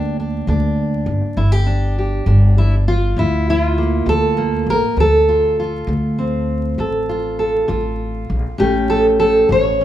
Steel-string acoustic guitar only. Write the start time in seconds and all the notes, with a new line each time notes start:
Already playing: G2 A#3 D4 G4
0.20 D4
0.48 D3 D4
1.37 G2 E4
1.52 G4
1.66 D4
1.98 G4
2.27 D3 D4
2.58 E4
2.88 F4
3.18 G2 E4
3.50 E4
3.63 F4
3.78 A#3
4.06 D3 A4
4.38 A#3
4.70 A#4
4.97 D2 A4
5.29 F4
5.60 F4
5.89 D3
6.18 C4
6.79 D2 A4
7.09 F4
7.39 A4
7.68 D3 F4
8.58 A2 A3 C#4 G4
8.90 A4
9.20 A4
9.50 A3 C#5
9.81 C#4